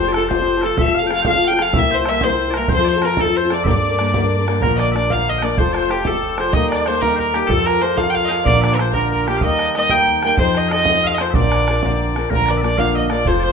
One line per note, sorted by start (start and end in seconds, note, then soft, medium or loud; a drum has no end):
0.00 0.76 F1 medium
0.00 2.67 G4 medium
0.00 0.23 A#4 medium
0.00 0.31 C5 medium
0.00 0.14 C5 medium
0.00 0.86 D5 medium
0.07 0.16 C4 soft
0.07 0.16 F4 medium
0.07 0.15 A4 soft
0.07 0.13 D5 medium
0.13 0.29 F3 medium
0.13 0.29 A4 medium
0.13 bodhran medium
0.17 0.30 C4 medium
0.17 0.30 F4 medium
0.17 0.64 A4 medium
0.17 0.31 A4 medium
0.29 0.39 F3 medium
0.29 0.39 C4 medium
0.29 0.39 F4 medium
0.29 0.37 A4 medium
0.29 0.62 C5 medium
0.29 1.91 C5 medium
0.29 0.67 C5 medium
0.29 bodhran medium
0.39 0.56 C4 soft
0.39 0.56 F4 soft
0.39 0.55 A4 soft
0.39 bodhran soft
0.56 0.63 C4 soft
0.56 0.64 F4 soft
0.56 0.63 A4 medium
0.62 0.77 F3 medium
0.62 0.78 C4 medium
0.62 0.78 F4 medium
0.62 0.78 A4 medium
0.62 2.60 A4 soft
0.62 0.79 A4 medium
0.62 bodhran medium
0.66 0.83 A4 medium
0.77 1.72 F1 medium
0.77 0.87 F3 medium
0.77 0.87 C4 medium
0.77 0.86 F4 medium
0.77 0.85 A4 medium
0.77 0.94 E5 loud
0.77 1.00 E5 medium
0.77 bodhran medium
0.81 1.00 E5 loud
0.86 1.04 C4 soft
0.86 1.03 F4 medium
0.86 1.01 A4 soft
0.86 bodhran soft
0.94 1.25 F5 medium
0.94 1.07 F5 medium
0.94 bodhran soft
0.99 1.10 A4 medium
0.99 1.12 F5 medium
1.04 1.09 C4 soft
1.04 1.09 F4 medium
1.04 1.11 G5 loud
1.09 1.25 F3 medium
1.09 1.26 C4 medium
1.09 1.26 F4 medium
1.09 1.26 A4 medium
1.09 1.22 F5 loud
1.09 bodhran medium
1.14 1.27 F5 medium
1.22 1.26 G5 loud
1.22 bodhran medium
1.26 1.35 F3 medium
1.26 1.35 C4 medium
1.26 1.35 F4 medium
1.26 1.34 A4 medium
1.26 1.54 F5 loud
1.26 1.60 F5 loud
1.26 1.49 F5 medium
1.35 1.52 C4 soft
1.35 1.51 F4 soft
1.35 1.49 A4 soft
1.35 bodhran soft
1.44 3.51 G5 medium
1.44 1.64 G5 loud
1.51 1.58 C4 soft
1.51 1.59 F4 medium
1.51 1.59 A4 soft
1.51 1.57 G5 medium
1.57 1.74 F3 medium
1.57 1.74 C4 medium
1.57 1.75 F4 medium
1.57 1.75 A4 medium
1.57 1.73 F5 medium
1.57 1.80 F5 medium
1.57 bodhran medium
1.62 1.79 F5 medium
1.73 2.67 C2 medium
1.73 1.83 C3 medium
1.73 1.83 G3 medium
1.73 1.84 A#3 medium
1.73 1.83 E4 medium
1.73 1.82 A#4 medium
1.73 1.91 E5 medium
1.73 2.06 E5 medium
1.73 bodhran medium
1.78 1.96 E5 loud
1.78 bodhran soft
1.83 2.00 A#3 soft
1.83 2.00 E4 soft
1.83 1.98 A#4 soft
1.91 2.05 C5 medium
1.91 2.20 C5 medium
1.91 2.10 C5 medium
1.91 bodhran soft
1.99 2.08 A#3 soft
1.99 2.07 E4 soft
1.99 2.07 A#4 soft
2.05 2.23 G3 medium
2.05 2.23 A#3 medium
2.05 2.22 E5 medium
2.05 4.36 E5 medium
2.05 2.26 E5 loud
2.05 bodhran medium
2.09 2.23 E4 medium
2.09 2.23 A#4 medium
2.21 2.31 C3 medium
2.21 2.32 G3 medium
2.21 2.32 A#3 medium
2.21 2.32 E4 medium
2.21 2.31 A#4 medium
2.21 2.68 C5 medium
2.21 2.51 C5 medium
2.21 2.58 C5 medium
2.21 bodhran medium
2.30 2.48 E4 soft
2.30 2.47 A#4 soft
2.30 bodhran soft
2.35 2.49 A#3 soft
2.48 2.56 A#3 soft
2.48 2.56 E4 medium
2.48 2.55 A#4 soft
2.48 2.54 D5 medium
2.54 2.71 G3 medium
2.54 2.71 A#3 medium
2.54 2.69 A#4 medium
2.54 3.03 A#4 soft
2.54 2.71 A#4 medium
2.54 bodhran medium
2.58 2.72 E4 medium
2.58 2.72 A#4 medium
2.68 3.63 F2 medium
2.68 2.79 F3 medium
2.68 2.80 C4 medium
2.68 2.87 C5 medium
2.68 2.85 C5 loud
2.68 bodhran medium
2.72 2.79 F4 medium
2.72 2.78 A4 medium
2.72 2.88 C5 loud
2.78 2.96 C4 soft
2.78 2.96 F4 soft
2.78 2.95 A4 soft
2.78 bodhran soft
2.85 3.35 C5 medium
2.85 2.89 D5 medium
2.85 bodhran soft
2.89 3.03 C5 medium
2.89 3.07 C5 medium
2.96 3.03 C4 soft
2.96 3.04 F4 soft
2.96 3.03 A4 medium
3.02 3.18 F3 medium
3.02 3.18 C4 medium
3.02 3.19 F4 medium
3.02 3.19 A4 medium
3.02 3.19 A#4 medium
3.02 3.25 A#4 medium
3.02 3.23 A#4 medium
3.02 bodhran medium
3.17 3.27 F3 medium
3.17 3.28 C4 medium
3.17 3.27 F4 medium
3.17 4.67 A4 medium
3.17 3.37 A4 medium
3.17 3.26 A4 medium
3.17 3.38 A4 medium
3.17 bodhran medium
3.25 3.43 F4 soft
3.25 3.42 A4 soft
3.25 bodhran soft
3.29 3.44 C4 soft
3.36 5.60 C5 medium
3.36 3.55 C5 medium
3.36 3.52 C5 medium
3.43 3.50 C4 soft
3.43 3.51 F4 medium
3.43 3.51 A4 soft
3.50 3.66 F3 medium
3.50 3.66 C4 medium
3.50 3.67 F4 medium
3.50 3.67 A4 medium
3.50 3.66 D5 medium
3.50 3.64 D5 loud
3.50 3.67 D5 medium
3.50 bodhran medium
3.64 4.59 G2 medium
3.64 3.75 G2 medium
3.64 3.75 D3 medium
3.64 3.74 G3 medium
3.64 3.74 A#3 medium
3.64 3.74 D4 medium
3.64 3.73 A#4 medium
3.64 4.77 D5 medium
3.64 4.63 D5 medium
3.64 3.67 E5 medium
3.64 bodhran medium
3.70 4.44 D5 medium
3.75 3.91 G3 soft
3.75 bodhran soft
3.83 bodhran soft
3.90 3.97 G3 soft
3.90 3.98 A#3 soft
3.90 3.99 D4 soft
3.90 3.98 A#4 soft
3.98 4.14 G3 medium
3.98 4.14 A#3 medium
3.98 4.14 D4 medium
3.98 4.15 A#4 medium
3.98 bodhran medium
4.14 4.23 G2 medium
4.14 4.23 D3 medium
4.14 4.23 G3 medium
4.14 4.23 A#3 medium
4.14 4.23 D4 medium
4.14 4.21 A#4 medium
4.14 bodhran medium
4.22 4.39 G3 medium
4.22 4.39 A#3 medium
4.22 4.39 D4 medium
4.22 4.38 A#4 medium
4.22 bodhran soft
4.39 4.45 G3 medium
4.39 4.47 A#3 medium
4.39 4.47 D4 medium
4.39 4.46 A#4 medium
4.46 4.62 G3 medium
4.46 4.62 A#3 medium
4.46 4.62 D4 medium
4.46 4.62 A#4 medium
4.46 bodhran medium
4.61 5.55 A#1 medium
4.61 4.94 A#2 medium
4.61 4.95 D3 medium
4.61 4.93 F3 medium
4.61 4.94 A#3 medium
4.61 4.95 D4 medium
4.61 6.14 A#4 medium
4.61 4.74 A#4 medium
4.61 4.80 A#4 medium
4.61 4.95 A#4 medium
4.61 bodhran medium
4.76 4.94 D5 medium
4.76 4.92 D5 medium
4.76 4.81 D#5 medium
4.76 bodhran soft
4.92 5.09 F3 medium
4.92 5.09 A#3 medium
4.92 5.14 D5 medium
4.92 5.36 D5 medium
4.92 4.96 E5 medium
4.92 bodhran medium
4.96 5.10 D4 medium
4.96 5.10 A#4 medium
4.96 5.11 D5 medium
5.10 5.42 A#2 medium
5.10 5.42 D3 medium
5.10 5.41 F3 medium
5.10 5.42 A#3 medium
5.10 5.42 D4 medium
5.10 5.43 A#4 medium
5.10 7.32 F5 medium
5.10 5.38 F5 medium
5.10 5.31 F5 medium
5.10 bodhran medium
5.29 5.45 D#5 medium
5.29 5.50 D#5 medium
5.29 bodhran soft
5.38 5.57 F3 medium
5.38 5.42 G5 medium
5.42 5.58 A#3 medium
5.42 5.58 D4 medium
5.42 5.58 A#4 medium
5.42 5.58 D5 medium
5.42 5.60 D5 medium
5.42 6.62 D5 medium
5.42 bodhran medium
5.57 6.52 F1 medium
5.57 5.90 F3 medium
5.57 5.90 C4 medium
5.57 5.91 F4 medium
5.57 5.91 A4 medium
5.57 5.73 C5 medium
5.57 5.75 C5 medium
5.57 5.77 C5 medium
5.57 bodhran medium
5.73 5.92 C5 medium
5.73 5.91 C5 medium
5.73 5.77 D5 medium
5.73 bodhran medium
5.78 6.40 C5 medium
5.91 6.05 F3 medium
5.91 6.05 C4 medium
5.91 6.06 F4 medium
5.91 6.07 G4 medium
5.91 6.08 G4 medium
5.91 7.34 G4 medium
5.91 6.07 A4 medium
5.91 bodhran medium
6.05 6.37 F3 medium
6.05 6.37 C4 medium
6.05 6.38 F4 medium
6.05 6.39 A4 medium
6.05 6.41 A4 medium
6.05 6.39 A4 medium
6.05 7.11 A4 medium
6.05 bodhran medium
6.23 bodhran soft
6.38 6.53 F3 medium
6.38 6.54 C4 medium
6.38 6.54 F4 medium
6.38 6.55 A4 medium
6.38 6.55 C5 medium
6.38 6.88 C5 medium
6.38 6.54 C5 medium
6.38 bodhran medium
6.53 7.48 D#2 medium
6.53 6.87 D#3 medium
6.53 6.85 G3 medium
6.53 6.86 A#3 medium
6.53 6.87 D#4 medium
6.53 6.87 A#4 medium
6.53 6.70 D#5 loud
6.53 6.72 D#5 medium
6.53 6.78 D#5 medium
6.53 bodhran medium
6.70 6.89 D5 medium
6.70 8.46 D5 medium
6.70 6.86 D5 medium
6.70 bodhran medium
6.86 7.01 G3 medium
6.86 7.01 A#3 medium
6.86 7.01 D#4 medium
6.86 7.02 A#4 medium
6.86 7.02 C5 medium
6.86 7.03 C5 medium
6.86 7.84 C5 medium
6.86 bodhran medium
7.01 7.34 D#3 medium
7.01 7.32 G3 medium
7.01 7.33 A#3 medium
7.01 7.34 D#4 medium
7.01 7.18 A#4 medium
7.01 7.16 A#4 medium
7.01 7.34 A#4 medium
7.01 7.20 A#4 medium
7.01 bodhran medium
7.16 7.36 A#4 medium
7.16 7.34 A#4 medium
7.16 7.20 C5 medium
7.16 bodhran soft
7.20 7.57 A#4 medium
7.33 7.49 G3 medium
7.33 7.49 A#3 medium
7.33 7.50 D#4 medium
7.33 7.51 G4 medium
7.33 9.27 G4 medium
7.33 7.48 G4 medium
7.33 7.50 A#4 medium
7.33 bodhran medium
7.47 8.44 F2 medium
7.47 7.80 F3 medium
7.47 7.81 C4 medium
7.47 7.82 F4 medium
7.47 7.68 A4 loud
7.47 7.82 A4 medium
7.47 7.74 A4 medium
7.47 7.67 A4 medium
7.47 bodhran medium
7.66 7.83 A#4 medium
7.66 7.97 A#4 medium
7.66 8.95 A#4 medium
7.66 bodhran medium
7.81 7.95 F3 medium
7.81 7.96 C4 medium
7.81 7.96 F4 medium
7.81 7.96 A4 medium
7.81 7.99 C5 medium
7.81 8.79 C5 medium
7.81 bodhran medium
7.96 8.29 F3 medium
7.96 8.29 C4 medium
7.96 8.30 F4 medium
7.96 8.31 A4 medium
7.96 8.13 F5 medium
7.96 8.11 F5 medium
7.96 8.15 F5 medium
7.96 bodhran medium
8.10 8.16 G5 medium
8.10 8.17 G5 medium
8.15 8.26 F5 loud
8.15 8.30 F5 medium
8.15 8.29 F5 medium
8.15 bodhran soft
8.25 8.29 D#5 medium
8.25 8.46 F5 medium
8.25 8.32 G5 medium
8.30 8.45 F3 medium
8.30 8.46 C4 medium
8.30 8.46 F4 medium
8.30 8.46 A4 medium
8.30 10.53 F5 medium
8.30 8.47 F5 medium
8.30 bodhran medium
8.44 9.40 A#1 medium
8.44 8.79 A#2 medium
8.44 8.79 D3 medium
8.44 8.77 F3 medium
8.44 8.78 A#3 medium
8.44 8.79 D4 medium
8.44 8.79 A#4 medium
8.44 8.63 D5 loud
8.44 8.63 D5 medium
8.44 8.61 D5 medium
8.44 bodhran medium
8.61 9.48 D5 medium
8.61 8.77 D5 medium
8.61 8.65 E5 medium
8.61 bodhran medium
8.75 8.94 F3 medium
8.75 8.94 A#3 medium
8.75 8.81 A#4 medium
8.75 8.81 E5 medium
8.75 bodhran medium
8.80 8.95 D4 medium
8.80 8.95 A#4 medium
8.80 10.40 C5 medium
8.80 8.93 C5 medium
8.80 8.95 C5 medium
8.94 9.27 A#2 medium
8.94 9.27 D3 medium
8.94 9.26 F3 medium
8.94 9.27 A#3 medium
8.94 9.28 D4 medium
8.94 9.10 A#4 medium
8.94 9.27 A#4 medium
8.94 9.12 A#4 medium
8.94 9.28 A#4 medium
8.94 bodhran medium
9.12 9.26 A#4 medium
9.12 11.95 A#4 medium
9.12 bodhran soft
9.27 9.43 F3 medium
9.27 9.42 A#3 medium
9.27 9.43 D4 medium
9.27 12.41 G4 medium
9.27 9.38 G4 medium
9.27 9.42 G4 medium
9.27 9.43 A#4 medium
9.27 bodhran medium
9.38 10.36 D#2 medium
9.38 9.91 D#5 medium
9.38 9.42 F5 medium
9.38 bodhran medium
9.42 9.75 D#3 medium
9.42 9.75 G3 medium
9.42 9.75 A#3 medium
9.42 9.76 D#4 medium
9.42 9.76 A#4 medium
9.42 9.75 D#5 medium
9.42 9.74 D#5 loud
9.59 bodhran medium
9.75 9.90 G3 medium
9.75 9.91 A#3 medium
9.75 9.91 D#4 medium
9.75 9.91 A#4 medium
9.75 10.57 D#5 medium
9.75 9.92 D#5 loud
9.75 bodhran soft
9.90 10.23 D#3 medium
9.90 10.22 G3 medium
9.90 10.23 A#3 medium
9.90 10.24 D#4 medium
9.90 10.24 A#4 medium
9.90 10.23 G5 loud
9.90 10.23 G5 medium
9.90 10.39 G5 medium
9.90 bodhran medium
10.08 bodhran soft
10.23 10.39 G3 medium
10.23 10.39 A#3 medium
10.23 10.39 D#4 medium
10.23 10.40 A#4 medium
10.23 12.31 G5 medium
10.23 10.38 G5 loud
10.23 bodhran medium
10.37 11.32 F2 medium
10.37 10.71 F3 medium
10.37 10.71 C4 medium
10.37 10.72 D#4 medium
10.37 10.72 A4 medium
10.37 10.59 C5 medium
10.37 10.69 C5 medium
10.37 11.17 C5 medium
10.37 bodhran medium
10.55 10.70 D#5 medium
10.55 10.71 D#5 medium
10.55 bodhran medium
10.69 10.86 F3 medium
10.69 10.87 C4 medium
10.69 11.11 D#5 medium
10.69 11.08 D#5 loud
10.69 11.04 D#5 medium
10.69 10.72 F5 medium
10.69 bodhran medium
10.73 10.87 D#4 medium
10.73 10.88 A4 medium
10.85 11.19 F3 medium
10.85 11.19 C4 medium
10.85 11.20 D#4 medium
10.85 11.21 A4 medium
10.85 bodhran medium
11.03 11.12 F5 medium
11.03 12.78 F5 medium
11.03 11.16 F5 medium
11.03 bodhran soft
11.11 11.40 D#5 medium
11.11 11.20 D#5 medium
11.11 11.23 D#5 medium
11.18 11.34 F3 medium
11.18 11.34 C4 medium
11.18 11.35 D#4 medium
11.18 11.36 A4 medium
11.18 13.26 C5 medium
11.18 11.31 C5 medium
11.18 11.35 C5 medium
11.18 bodhran medium
11.31 12.28 A#1 medium
11.31 12.49 D5 medium
11.31 11.35 E5 medium
11.31 bodhran medium
11.35 11.67 A#2 medium
11.35 11.68 D3 medium
11.35 11.68 F3 medium
11.35 11.68 C4 medium
11.35 11.68 D4 medium
11.35 11.68 A#4 medium
11.35 12.30 D5 medium
11.35 11.97 D5 medium
11.52 bodhran medium
11.68 11.83 F3 medium
11.68 11.83 C4 medium
11.68 11.84 D4 medium
11.68 11.84 A#4 medium
11.68 bodhran medium
11.83 12.16 A#2 medium
11.83 12.16 D3 medium
11.83 12.16 F3 medium
11.83 12.16 C4 medium
11.83 12.16 D4 medium
11.83 12.16 A#4 medium
11.83 bodhran medium
12.00 bodhran soft
12.16 12.30 F3 medium
12.16 12.31 C4 medium
12.16 12.31 D4 medium
12.16 12.31 A#4 medium
12.16 bodhran medium
12.29 13.24 A#1 medium
12.29 12.63 A#2 medium
12.29 12.64 D3 medium
12.29 12.62 F3 medium
12.29 12.63 A#3 medium
12.29 12.63 D4 medium
12.29 13.52 A#4 medium
12.29 12.46 A#4 medium
12.29 12.64 A#4 medium
12.29 bodhran medium
12.34 12.52 A#4 medium
12.46 12.57 D5 medium
12.46 12.64 D5 medium
12.46 bodhran medium
12.51 12.64 D5 medium
12.57 12.78 D5 medium
12.57 12.61 E5 medium
12.63 12.77 F3 medium
12.63 12.77 A#3 medium
12.63 12.77 D4 medium
12.63 12.77 A#4 medium
12.63 13.01 D5 medium
12.63 12.81 D5 medium
12.63 bodhran medium
12.78 13.11 A#2 medium
12.78 13.11 D3 medium
12.78 13.09 F3 medium
12.78 13.10 A#3 medium
12.78 13.11 D4 medium
12.78 13.11 A#4 medium
12.78 12.95 F5 medium
12.78 13.52 F5 medium
12.78 12.96 F5 medium
12.78 bodhran medium
12.95 13.16 D#5 medium
12.95 13.11 D#5 medium
12.95 13.10 D#5 medium
12.95 bodhran soft
13.10 13.25 F3 medium
13.10 13.26 A#3 medium
13.10 13.27 D4 medium
13.10 13.27 A#4 medium
13.10 13.26 D5 medium
13.10 13.29 D5 medium
13.10 bodhran medium
13.25 13.52 F1 medium
13.25 13.52 F3 medium
13.25 13.52 C4 medium
13.25 13.52 F4 medium
13.25 13.52 A4 medium
13.25 13.44 C5 medium
13.25 13.40 C5 medium
13.25 13.44 C5 medium
13.25 bodhran medium
13.40 13.52 C5 medium
13.40 13.43 D5 medium
13.44 13.52 C5 medium